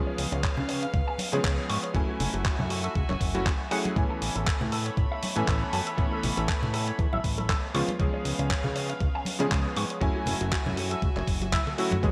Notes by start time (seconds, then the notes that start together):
Already playing: F3 G#3 B3 C#4 G#4 B4 F5
0.07 C#5
0.18 C#2, open hi-hat
0.32 C#2 C#5, closed hi-hat
0.43 C#5, kick, clap, closed hi-hat
0.57 C#3, low conga
0.68 C#5, open hi-hat
0.82 F5, closed hi-hat
0.94 C#2, kick, closed hi-hat
1.07 G#5
1.18 open hi-hat, high conga
1.32 C#3 F3 G#3 B3 C#4 G#4 C#5, closed hi-hat
1.44 C#2 C#5, kick, clap
1.69 G#2 C#6, open hi-hat
1.83 C#5, closed hi-hat
1.94 F#1 F#3 A3 C#4 E4 F#4 E5 G#5, kick, closed hi-hat
2.08 F#4
2.20 F#1, open hi-hat, low conga
2.33 F#1 F#4, closed hi-hat
2.45 F#4, kick, clap, closed hi-hat
2.59 F#2, low conga
2.70 F#4, open hi-hat
2.84 A4, closed hi-hat
2.95 C#2, kick, closed hi-hat
3.09 F#1 C#5, clap, high conga
3.21 F#1, kick, open hi-hat
3.34 F#3 A3 C#4 E4 F#4, closed hi-hat, high conga
3.46 F#4, kick, clap, closed hi-hat
3.71 F#3 A3 C#4 E4 G#4 F#5, open hi-hat
3.85 F#4, closed hi-hat, high conga
3.96 A1 E3 A3 B3 C#4 C#5 G#5 B5, kick, closed hi-hat
4.10 A4
4.22 A1, open hi-hat
4.35 A1 A4, closed hi-hat
4.47 A4, kick, clap
4.61 A2, low conga
4.72 A4, open hi-hat
4.86 C#5, closed hi-hat
4.97 A1, kick, closed hi-hat
5.12 E5
5.23 open hi-hat, high conga
5.36 A2 E3 A3 B3 C#4 A4 G#5, closed hi-hat
5.48 A1 A4, kick, clap, closed hi-hat
5.73 F#2 A5, open hi-hat
5.87 A4, closed hi-hat
5.97 A1 E3 A3 B3 C#4, kick, closed hi-hat
6.12 A4
6.23 A1, open hi-hat, low conga
6.37 A1 A4, closed hi-hat
6.48 A4, kick, clap, closed hi-hat
6.63 A2, low conga
6.74 A4, open hi-hat
6.87 C#5, closed hi-hat
6.99 E2, kick, closed hi-hat
7.13 A1 E5, high conga
7.24 A1, kick, open hi-hat
7.38 A4, closed hi-hat, high conga
7.49 A4, kick, clap, closed hi-hat
7.74 C#2 F3 G#3 B3 C#4 F4 B4 F5 C#6, open hi-hat
7.88 C#5, closed hi-hat, high conga
7.99 C#2 F3 G#3 B3 C#4 G#4, kick, closed hi-hat
8.14 C#5
8.25 C#2, open hi-hat
8.39 C#2 C#5, closed hi-hat
8.50 C#5, kick, clap, closed hi-hat
8.64 C#3, low conga
8.76 C#5, open hi-hat
8.90 F5, closed hi-hat
9.00 C#2, kick, closed hi-hat
9.15 G#5
9.25 open hi-hat, high conga
9.39 C#3 F3 G#3 B3 C#4 G#4 C#5, closed hi-hat
9.51 C#2 C#5, kick, clap, closed hi-hat
9.76 G#2 C#6, open hi-hat
9.90 C#5, closed hi-hat
10.01 F#1 F#3 A3 C#4 E4 F#4 E5 G#5, kick, closed hi-hat
10.16 F#4
10.26 F#1, open hi-hat, low conga
10.41 F#1 F#4, closed hi-hat
10.52 F#4, kick, clap, closed hi-hat
10.66 F#2, low conga
10.77 F#4, open hi-hat, high conga
10.91 A4, closed hi-hat
11.02 C#2, kick, closed hi-hat
11.16 F#1 C#5, clap, high conga
11.27 F#1, kick, open hi-hat
11.41 F#4, closed hi-hat, high conga
11.53 E4, kick, clap, closed hi-hat, high tom
11.67 A4, high tom
11.78 F#3 A3 C#4 E4 F#4, open hi-hat
11.91 F#4, closed hi-hat, mid tom, high conga
12.03 A1 E3 G#3 A3 B3 C#4 G#4 C#5 B5, kick, closed hi-hat